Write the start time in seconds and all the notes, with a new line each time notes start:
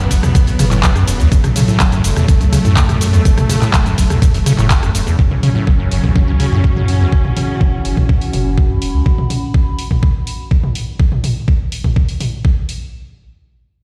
Already playing: C#3 F#3 B3
0.11 F#1 F#2, kick, open hi-hat, ride, cabasa
0.23 E2, cross-stick, closed hi-hat, mid tom, cabasa
0.35 F#2, kick, closed hi-hat, cabasa
0.47 F#2, open hi-hat, cabasa
0.59 F#1 C#3, cross-stick, mid tom, open hi-hat, ride, cabasa
0.71 A2, clap, closed hi-hat, cabasa
0.83 F#2, kick, clap, closed hi-hat, cabasa
0.96 F#2, cross-stick, closed hi-hat, cabasa
1.07 E1 F#2, open hi-hat, ride, cabasa
1.20 C#2 E2, closed hi-hat, cabasa
1.32 F#1 F#2 A3, kick, closed hi-hat, cabasa
1.44 F#2, cross-stick, closed hi-hat, mid tom, cabasa
1.56 C#3, mid tom, open hi-hat, ride, cabasa
1.68 A2, closed hi-hat, cabasa
1.80 F#1 F#2, kick, cross-stick, clap, closed hi-hat, cabasa
1.92 F#2, closed hi-hat, cabasa
2.04 F#1 F#2, open hi-hat, ride, cabasa
2.16 E2, cross-stick, closed hi-hat, mid tom, cabasa
2.28 F#1 F#2, kick, closed hi-hat, cabasa
2.41 C#2 F#2, closed hi-hat, cabasa
2.53 C#3, cross-stick, open hi-hat, ride, cabasa
2.65 F#2 A2, closed hi-hat, cabasa
2.77 F#2, kick, clap, closed hi-hat, cabasa
2.89 F#2, cross-stick, closed hi-hat, mid tom, cabasa
3.01 F#2, open hi-hat, ride, cabasa
3.13 E2, closed hi-hat, cabasa
3.25 F#1 F#2, kick, closed hi-hat, cabasa
3.37 F#2, cross-stick, closed hi-hat, mid tom, cabasa
3.49 C#3, mid tom, open hi-hat, ride, cabasa
3.62 A2, clap, closed hi-hat, cabasa
3.74 F#1 F#2, kick, cross-stick, clap, closed hi-hat, cabasa
3.86 F#2, closed hi-hat, cabasa
3.98 F#1 F#2, kick, open hi-hat, ride, cabasa
4.10 E2, cross-stick, closed hi-hat, mid tom, cabasa
4.22 F#2, kick, closed hi-hat, cabasa
4.34 E1 F#2, open hi-hat, cabasa
4.46 C#3, cross-stick, mid tom, open hi-hat, ride, cabasa
4.58 F#1 A2, clap, closed hi-hat, cabasa
4.70 kick, clap, closed hi-hat, cabasa
4.83 F#2, cross-stick, closed hi-hat, cabasa
4.95 E1 F#2, open hi-hat, ride, cabasa
5.07 E2, closed hi-hat, cabasa
5.19 F#1 F#2 C#3 F#3 C#4, kick
5.31 F#2 F#4, mid tom
5.43 C#3, mid tom, open hi-hat
5.55 A2
5.65 F#1 F#2 C#6, kick
5.69 F#5
5.79 F#2
5.91 F#1 F#2, open hi-hat
6.04 E2, kick, mid tom
6.16 F#1 F#2, kick
6.28 C#2 F#2
6.40 C#3, open hi-hat
6.52 F#2 A2
6.64 F#2, kick
6.76 F#2, mid tom
6.88 F#2, open hi-hat
7.00 E2
7.12 F#1 E3, kick
7.25 mid tom
7.37 mid tom, open hi-hat
7.61 F#1, kick
7.85 F#1, open hi-hat
7.97 B5, kick, mid tom
8.09 kick
8.21 open hi-hat
8.33 F#1, mid tom, open hi-hat
8.58 kick
8.70 F#2
8.82 E1, open hi-hat
8.94 C#2
9.06 kick
9.18 mid tom
9.30 mid tom, open hi-hat
9.54 kick
9.79 open hi-hat
9.91 kick, mid tom
10.03 kick
10.27 open hi-hat
10.51 kick
10.63 mid tom
10.75 open hi-hat
11.00 kick
11.12 mid tom
11.24 mid tom, open hi-hat
11.48 kick
11.72 open hi-hat
11.84 kick, mid tom
11.96 kick
12.09 open hi-hat
12.20 mid tom, open hi-hat
12.45 kick
12.69 open hi-hat